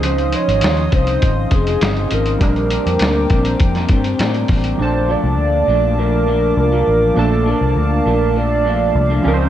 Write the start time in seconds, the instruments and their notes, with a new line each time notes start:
Already playing: fingered electric bass C#2, synth keys F3 C#4 D#4 D#5, analog synth pad D#5 F5 C6 D#6
0.03 clean electric guitar C#3 F3 D#4, soft synth lead C5, closed hi-hat
0.18 closed hi-hat
0.32 soft synth lead C#5, closed hi-hat
0.48 fingered electric bass G#1, closed hi-hat
0.61 fingered electric bass D#2, snare, closed hi-hat
0.77 closed hi-hat
0.92 fingered electric bass C2, clean electric guitar C#3 F3 C4 D#4, soft synth lead C5, kick, closed hi-hat
1.07 closed hi-hat
1.22 fingered electric bass G#1, kick, closed hi-hat
1.51 fingered electric bass F1, clean electric guitar C#3 F3 C4 D#4, soft synth lead G#4, kick, closed hi-hat
1.66 clean electric guitar F3 C4 D#4, closed hi-hat
1.81 fingered electric bass G1, clean electric guitar C#3 F3 C4 D#4, snare, closed hi-hat
1.96 closed hi-hat
2.10 fingered electric bass G#1, clean electric guitar C#3 F3 C4 D#4, soft synth lead A#4, closed hi-hat
2.26 closed hi-hat
2.38 fingered electric bass A#1, clean electric guitar A#2 G3 C4 D4, synth keys G3 C4 D4, analog synth pad C5 G5 A#5 D6, kick, closed hi-hat
2.43 synth keys A#4
2.56 closed hi-hat
2.70 closed hi-hat
2.86 fingered electric bass F2, closed hi-hat
2.99 fingered electric bass D2, snare, closed hi-hat
3.30 fingered electric bass A#1, clean electric guitar A#2 G3 C4 D4, kick, closed hi-hat
3.45 closed hi-hat
3.60 fingered electric bass F2, kick, closed hi-hat
3.75 snare, closed hi-hat
3.89 fingered electric bass G2, clean electric guitar A#2 G3 C4 D4, kick, closed hi-hat
4.04 clean electric guitar G3 C4 D4, closed hi-hat
4.19 fingered electric bass A2, clean electric guitar A#2 G3 C4 D4, snare, closed hi-hat
4.34 closed hi-hat
4.48 fingered electric bass A1, clean electric guitar A#2 G3 C4 D4, kick, open hi-hat
4.64 closed hi-hat
4.77 fingered electric bass A#1, clean electric guitar A#2 F3 A3 D4, synth keys F3 A#3 D4, soft synth lead C5, analog synth pad D5 F5 A5 D6
4.82 synth keys A5
5.08 clean electric guitar A#2 F3 A3 D4, soft synth lead D5
5.23 fingered electric bass C2
5.38 fingered electric bass D2
5.67 fingered electric bass A#1, clean electric guitar A#2 F3 A3 D4
5.98 clean electric guitar A#2 F3 A3 D4, soft synth lead A#4
6.27 clean electric guitar A#2 F3 A3 D4
6.57 fingered electric bass C2, soft synth lead A#4
6.71 clean electric guitar A#2 F3 D4
6.87 fingered electric bass A1
7.14 fingered electric bass A#1, clean electric guitar A#2 F3 A3, synth keys F3 A#3 D4, analog synth pad A5
7.18 clean electric guitar D4, soft synth lead A4, synth keys A5
7.45 clean electric guitar A#2 F3 D4, soft synth lead A#4
7.61 fingered electric bass C2
7.76 fingered electric bass D2
8.06 fingered electric bass A#1, clean electric guitar A#2 F3 A3 D4
8.35 clean electric guitar A#2 F3 A3 D4, soft synth lead D5
8.65 clean electric guitar A#2 F3 A3 D4
8.95 fingered electric bass C2
9.09 clean electric guitar A#2 F3 A3 D4
9.22 fingered electric bass C#2, clean electric guitar C#3 F3 C4 D#4, synth keys F3 C#4 D#4, analog synth pad D#5 D#6
9.27 synth keys A#4, analog synth pad C6
9.34 synth keys C5